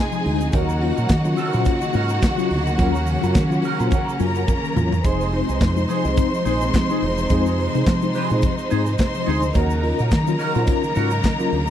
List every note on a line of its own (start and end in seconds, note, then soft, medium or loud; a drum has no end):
0.00 0.50 C3 medium
0.00 0.50 F3 medium
0.00 0.50 G#3 medium
0.00 2.75 D#4 medium
0.00 0.51 G#4 medium
0.00 0.51 G#5 medium
0.12 0.24 F3 medium
0.12 muted clean electric guitar stroke medium
0.12 shaker medium
0.24 0.50 D2 loud
0.24 0.40 G#3 medium
0.24 0.40 C4 medium
0.24 0.40 D#4 medium
0.24 open hi-hat medium
0.40 muted clean electric guitar stroke soft
0.40 closed hi-hat medium
0.40 shaker medium
0.52 0.91 D#2 loud
0.52 5.01 C#3 medium
0.52 0.68 D#3 medium
0.52 5.01 F#3 medium
0.52 5.01 A#3 medium
0.52 0.80 C#4 medium
0.52 4.15 F#4 medium
0.52 0.81 F#4 medium
0.52 0.81 A#4 medium
0.52 4.15 F#5 medium
0.52 kick loud
0.52 closed hi-hat medium
0.52 shaker medium
0.69 shaker medium
0.81 0.96 C#4 medium
0.81 0.97 F4 medium
0.81 muted clean electric guitar stroke medium
0.81 open hi-hat medium
0.96 1.08 A#2 medium
0.96 1.08 C#4 medium
0.96 1.09 F#4 medium
0.96 1.08 A#4 medium
0.96 closed hi-hat medium
0.96 shaker medium
1.09 1.34 D#3 medium
1.09 muted clean electric guitar stroke soft
1.09 kick loud
1.09 snare loud
1.09 clap medium
1.09 closed hi-hat medium
1.09 shaker medium
1.25 1.37 F#3 medium
1.25 1.37 C#4 medium
1.25 1.37 F4 medium
1.25 muted clean electric guitar stroke medium
1.25 shaker medium
1.36 1.53 D#3 medium
1.36 1.54 C#4 medium
1.36 1.53 F#4 medium
1.36 1.53 A#4 loud
1.36 open hi-hat medium
1.36 shaker medium
1.53 1.65 A#2 medium
1.53 1.65 F#3 medium
1.53 1.64 C#4 medium
1.53 1.66 C#4 medium
1.53 1.65 F4 medium
1.53 1.66 F#4 medium
1.53 1.65 C5 medium
1.53 closed hi-hat medium
1.53 shaker soft
1.65 1.81 C#4 medium
1.65 1.81 F4 medium
1.65 kick loud
1.65 closed hi-hat medium
1.65 shaker medium
1.81 1.93 D#3 medium
1.81 muted clean electric guitar stroke medium
1.81 shaker medium
1.93 2.18 G#2 loud
1.93 2.09 C#4 medium
1.93 2.13 C#4 medium
1.93 2.09 F4 medium
1.93 2.11 F#4 medium
1.93 2.10 A#4 medium
1.93 open hi-hat medium
1.93 shaker medium
2.09 muted clean electric guitar stroke soft
2.09 closed hi-hat soft
2.09 shaker medium
2.22 2.37 D#3 medium
2.22 muted clean electric guitar stroke soft
2.22 kick loud
2.22 snare loud
2.22 clap loud
2.22 closed hi-hat medium
2.22 shaker medium
2.38 2.50 F#3 medium
2.38 2.49 C#4 medium
2.38 2.49 F4 loud
2.38 muted clean electric guitar stroke medium
2.38 shaker medium
2.50 2.75 D2 medium
2.50 2.57 C#4 soft
2.50 2.57 F4 soft
2.50 open hi-hat medium
2.66 muted clean electric guitar stroke medium
2.66 closed hi-hat soft
2.66 shaker medium
2.77 3.16 D#2 loud
2.77 2.93 F#3 loud
2.77 2.93 C#4 medium
2.77 5.02 C#4 medium
2.77 3.06 C#4 medium
2.77 2.93 F4 loud
2.77 3.06 F#4 medium
2.77 kick loud
2.77 closed hi-hat medium
2.77 shaker medium
2.82 3.07 A#4 medium
2.95 snare soft
2.95 shaker medium
3.06 3.21 D#3 medium
3.06 muted clean electric guitar stroke medium
3.06 open hi-hat medium
3.06 shaker medium
3.21 3.34 F#2 medium
3.21 3.34 F#3 medium
3.21 3.34 C#4 medium
3.21 3.34 F4 medium
3.21 3.35 F#4 medium
3.21 3.35 A#4 medium
3.21 closed hi-hat medium
3.21 shaker medium
3.26 3.36 C#4 medium
3.34 3.59 D#3 loud
3.34 muted clean electric guitar stroke soft
3.34 kick loud
3.34 snare loud
3.34 clap loud
3.34 closed hi-hat medium
3.34 shaker medium
3.50 3.62 F#3 medium
3.50 3.62 C#4 medium
3.50 3.62 F4 medium
3.50 muted clean electric guitar stroke medium
3.50 shaker medium
3.62 3.78 D#3 medium
3.62 3.81 C#4 medium
3.62 open hi-hat medium
3.62 shaker medium
3.66 3.80 F#4 medium
3.66 3.80 A#4 medium
3.79 3.90 A#2 medium
3.79 3.91 F#3 medium
3.79 3.91 C#4 medium
3.79 3.91 F4 medium
3.79 3.92 F#4 medium
3.79 3.91 C5 medium
3.79 closed hi-hat soft
3.79 shaker soft
3.91 4.06 D#3 medium
3.91 4.10 C#4 medium
3.91 4.08 F#4 medium
3.91 kick loud
3.91 closed hi-hat medium
3.91 shaker medium
3.95 4.07 A#4 medium
4.08 muted clean electric guitar stroke medium
4.08 shaker medium
4.19 4.44 F#2 loud
4.19 4.34 F#3 medium
4.19 4.33 C#4 medium
4.19 4.34 F4 medium
4.19 5.03 A#4 medium
4.19 5.02 A#5 medium
4.19 muted clean electric guitar stroke soft
4.19 open hi-hat medium
4.19 shaker medium
4.35 4.40 C#4 soft
4.35 4.46 C#4 soft
4.35 4.40 F4 soft
4.35 4.47 F#4 medium
4.35 4.47 A#4 medium
4.35 closed hi-hat soft
4.35 shaker medium
4.47 4.55 C#4 soft
4.47 4.55 F4 medium
4.47 muted clean electric guitar stroke medium
4.47 kick loud
4.47 high tom medium
4.47 shaker medium
4.63 4.75 D#3 medium
4.63 muted clean electric guitar stroke medium
4.63 shaker medium
4.76 5.00 E2 medium
4.76 4.91 F#3 medium
4.76 4.91 C#4 medium
4.76 4.91 F4 medium
4.76 mid tom loud
4.76 shaker medium
4.92 muted clean electric guitar stroke soft
4.92 floor tom loud
4.92 shaker medium
5.04 5.41 F1 loud
5.04 9.51 C3 medium
5.04 5.19 F3 medium
5.04 9.51 F3 medium
5.04 9.51 G#3 medium
5.04 5.31 D#4 medium
5.04 11.70 D#4 medium
5.04 5.31 G#4 medium
5.04 8.95 C5 medium
5.04 5.31 C5 loud
5.04 8.95 C6 medium
5.04 kick loud
5.04 closed hi-hat medium
5.04 shaker medium
5.21 snare soft
5.21 shaker medium
5.32 5.47 C4 medium
5.32 5.48 D#4 medium
5.32 muted clean electric guitar stroke soft
5.32 open hi-hat medium
5.48 5.59 C2 medium
5.48 5.59 D#4 medium
5.48 5.60 G#4 medium
5.48 5.60 C5 medium
5.48 closed hi-hat medium
5.48 shaker medium
5.61 5.85 F2 loud
5.61 muted clean electric guitar stroke soft
5.61 kick loud
5.61 snare loud
5.61 clap medium
5.61 closed hi-hat medium
5.61 shaker medium
5.76 5.88 G#3 medium
5.76 5.88 C4 medium
5.76 5.88 D#4 medium
5.76 muted clean electric guitar stroke soft
5.76 shaker medium
5.88 6.04 F3 medium
5.88 6.05 D#4 medium
5.88 6.05 G#4 medium
5.88 6.05 C5 loud
5.88 open hi-hat medium
5.88 shaker medium
6.04 6.15 C2 loud
6.04 6.16 G#3 medium
6.04 6.16 C4 medium
6.04 6.16 D#4 medium
6.04 6.17 D#4 soft
6.04 6.16 G#4 medium
6.04 6.16 D#5 medium
6.04 closed hi-hat soft
6.04 shaker soft
6.17 6.31 C4 medium
6.17 6.32 D#4 medium
6.17 kick loud
6.17 closed hi-hat medium
6.17 shaker medium
6.33 6.44 F3 medium
6.33 muted clean electric guitar stroke medium
6.33 shaker medium
6.45 6.69 A#1 medium
6.45 6.60 C4 medium
6.45 6.63 D#4 medium
6.45 6.61 D#4 medium
6.45 6.62 G#4 medium
6.45 6.61 C5 medium
6.45 open hi-hat medium
6.45 shaker medium
6.61 muted clean electric guitar stroke medium
6.61 closed hi-hat soft
6.61 shaker medium
6.74 6.88 F3 medium
6.74 muted clean electric guitar stroke medium
6.74 kick loud
6.74 snare loud
6.74 clap loud
6.74 closed hi-hat medium
6.74 shaker medium
6.90 7.01 G#3 medium
6.90 7.01 C4 medium
6.90 7.01 D#4 medium
6.90 7.00 D#4 medium
6.90 7.01 G#4 medium
6.90 7.01 C5 medium
6.90 shaker medium
7.01 7.25 E1 medium
7.01 7.08 C4 soft
7.01 7.08 D#4 soft
7.01 muted clean electric guitar stroke soft
7.01 open hi-hat medium
7.17 muted clean electric guitar stroke medium
7.17 closed hi-hat medium
7.17 shaker medium
7.29 7.67 F2 loud
7.29 7.45 G#3 medium
7.29 7.45 C4 medium
7.29 7.56 D#4 medium
7.29 7.45 D#4 loud
7.29 7.57 G#4 loud
7.29 7.57 C5 medium
7.29 kick loud
7.29 closed hi-hat medium
7.29 shaker medium
7.46 snare soft
7.46 shaker medium
7.58 7.73 F3 medium
7.58 muted clean electric guitar stroke medium
7.58 open hi-hat medium
7.74 7.85 C3 medium
7.74 7.85 G#3 medium
7.74 7.86 C4 medium
7.74 7.86 D#4 medium
7.74 7.86 G#4 medium
7.74 7.85 C5 medium
7.74 closed hi-hat medium
7.74 shaker soft
7.86 8.10 F3 loud
7.86 muted clean electric guitar stroke soft
7.86 kick loud
7.86 snare loud
7.86 clap medium
7.86 closed hi-hat medium
7.86 shaker medium
8.02 8.14 G#3 medium
8.02 8.14 C4 medium
8.02 8.14 D#4 medium
8.02 muted clean electric guitar stroke soft
8.02 shaker medium
8.13 8.29 F3 medium
8.13 8.31 D#4 medium
8.13 8.30 G#4 medium
8.13 8.30 C5 medium
8.13 open hi-hat medium
8.13 shaker medium
8.30 8.41 A#2 loud
8.30 8.42 G#3 medium
8.30 8.42 C4 medium
8.30 8.42 D#4 medium
8.30 8.42 G#4 medium
8.30 8.41 D#5 medium
8.30 closed hi-hat medium
8.30 shaker soft
8.42 8.57 F3 medium
8.42 kick loud
8.42 closed hi-hat medium
8.42 shaker medium
8.58 muted clean electric guitar stroke medium
8.58 shaker medium
8.70 8.95 G#2 loud
8.70 8.85 G#3 medium
8.70 8.85 C4 medium
8.70 8.88 D#4 medium
8.70 8.86 D#4 medium
8.70 8.86 G#4 loud
8.70 8.85 C5 medium
8.70 open hi-hat medium
8.70 shaker medium
8.86 8.91 C4 soft
8.86 8.91 D#4 soft
8.86 muted clean electric guitar stroke soft
8.86 closed hi-hat soft
8.86 shaker medium
8.98 9.05 C4 soft
8.98 9.05 D#4 medium
8.98 9.54 C5 medium
8.98 9.54 C6 medium
8.98 kick loud
8.98 snare loud
8.98 clap loud
8.98 closed hi-hat medium
8.98 shaker medium
9.14 9.26 F3 medium
9.14 muted clean electric guitar stroke medium
9.14 shaker medium
9.26 9.51 D2 medium
9.26 9.41 G#3 medium
9.26 9.41 C4 medium
9.26 9.44 D#4 medium
9.26 9.42 D#4 loud
9.26 9.43 G#4 medium
9.26 9.41 C5 loud
9.26 open hi-hat medium
9.42 muted clean electric guitar stroke medium
9.42 closed hi-hat medium
9.42 shaker medium
9.54 9.92 D#2 loud
9.54 11.70 C#3 medium
9.54 9.70 D#3 medium
9.54 11.70 F#3 medium
9.54 11.70 A#3 medium
9.54 9.80 C#4 medium
9.54 9.81 F#4 medium
9.54 11.70 A#4 medium
9.54 9.81 A#4 medium
9.54 11.70 A#5 medium
9.54 kick loud
9.54 closed hi-hat medium
9.54 shaker medium
9.70 shaker medium
9.83 9.97 C#4 medium
9.83 9.98 F4 medium
9.83 muted clean electric guitar stroke soft
9.83 open hi-hat medium
9.99 10.10 A#2 medium
9.99 10.11 C#4 medium
9.99 10.11 F#4 medium
9.99 10.10 A#4 medium
9.99 closed hi-hat medium
9.99 shaker medium
10.11 10.35 D#3 loud
10.11 muted clean electric guitar stroke soft
10.11 kick loud
10.11 snare loud
10.11 clap medium
10.11 closed hi-hat medium
10.11 shaker medium
10.27 10.38 F#3 medium
10.27 10.39 C#4 medium
10.27 10.39 F4 medium
10.27 muted clean electric guitar stroke soft
10.27 shaker medium
10.39 10.54 D#3 medium
10.39 10.56 C#4 medium
10.39 10.55 F#4 medium
10.39 10.55 A#4 loud
10.39 open hi-hat medium
10.39 shaker medium
10.54 10.66 A#2 loud
10.54 10.66 F#3 medium
10.54 10.67 C#4 medium
10.54 10.67 F4 medium
10.54 10.67 F#4 medium
10.54 10.66 C5 medium
10.54 closed hi-hat medium
10.54 shaker soft
10.67 10.82 C#4 medium
10.67 10.82 F4 medium
10.67 kick loud
10.67 closed hi-hat medium
10.67 shaker medium
10.83 10.95 D#3 medium
10.83 muted clean electric guitar stroke medium
10.83 shaker medium
10.95 11.20 G#2 loud
10.95 11.13 C#4 medium
10.95 11.10 C#4 medium
10.95 11.10 F4 medium
10.95 11.12 F#4 loud
10.95 11.10 A#4 loud
10.95 open hi-hat medium
10.95 shaker medium
11.10 muted clean electric guitar stroke soft
11.10 closed hi-hat soft
11.10 shaker medium
11.23 11.38 D#3 medium
11.23 muted clean electric guitar stroke soft
11.23 kick loud
11.23 snare loud
11.23 clap medium
11.23 closed hi-hat medium
11.23 shaker medium
11.39 11.51 F#3 medium
11.39 11.51 C#4 medium
11.39 11.51 F4 loud
11.39 muted clean electric guitar stroke medium
11.39 shaker medium
11.52 11.70 D2 loud
11.52 11.58 C#4 soft
11.52 11.58 F4 soft
11.52 open hi-hat medium